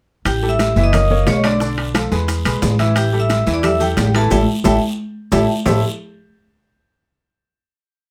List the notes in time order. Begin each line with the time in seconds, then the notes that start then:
0.25 A1 G4 G5, high bongo, high conga, high timbale, long guiro, maracas
0.43 G3 G4 A4, high conga
0.49 E5 E6
0.59 high bongo, high conga, high timbale, short guiro, maracas
0.76 F#1 E3 E4 E5, high conga, short guiro, maracas
0.84 D#5 D#6
0.93 A#3 A#4 C#5, high bongo, high conga, low conga, high timbale, long guiro, maracas
1.10 A#3 A#4 C#5, high conga, low conga
1.23 B1 D#5, high bongo, low bongo, high conga, high timbale, low timbale, short guiro, maracas
1.28 C#5 C#6
1.44 D3 D4 D5 D6, high conga, high timbale, short guiro, maracas
1.60 D3 D4 D5, high bongo, long guiro, maracas
1.77 high bongo, high conga, high timbale
1.94 F3 F4 A4, high bongo, high conga, high timbale, short guiro, maracas
2.11 E2 G#3 G#4 B4, high bongo, high conga, short guiro, maracas
2.28 high bongo, high conga, high timbale, long guiro, maracas
2.45 B1 G#3 G#4 B4, high bongo, high conga, high timbale, maracas
2.62 A1, high bongo, low bongo, high conga, low timbale, short guiro, maracas
2.79 E3 E4 E5, high conga, high timbale, short guiro, maracas
2.96 G4 G5, high bongo, high conga, high timbale, long guiro, maracas
3.13 G3 G4 A4, high conga
3.20 E5 E6
3.30 high bongo, high conga, high timbale, short guiro, maracas
3.47 E2 E3 E4 E5, short guiro, maracas
3.53 D5 D6
3.63 G3 G4 A4 E5 E6, high bongo, high conga, low conga, high timbale, long guiro, maracas
3.80 G3 G4 A4 G5, high conga, low conga, maracas
3.97 A1, high bongo, low bongo, high conga, high timbale, low timbale, short guiro, maracas
4.14 E3 E4 A4 E5 A5, high conga, high timbale, short guiro, maracas
4.31 A1 E4 G4 A4 E5 G5 A5, low bongo, high conga, high timbale, long guiro, maracas
4.64 A1 E4 G4 A4 E5 G5 A5, low bongo, high conga, high timbale, maracas
5.32 A1 E4 G4 A4 E5 G5 A5, low bongo, high conga, high timbale, long guiro, maracas
5.66 A1 A3 E4 G4 A4 C5 E5 A5, low bongo, low conga, low timbale, long guiro, maracas